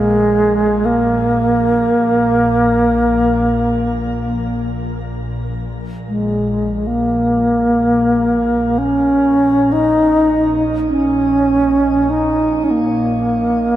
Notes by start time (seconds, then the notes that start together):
Already playing: A#1 G#3
0.85 A#3
6.08 G#3
6.87 A#3
8.60 A#1
8.78 C#4
9.72 D#4
10.89 C#4
12.10 D#4
12.64 C#4
12.71 A#3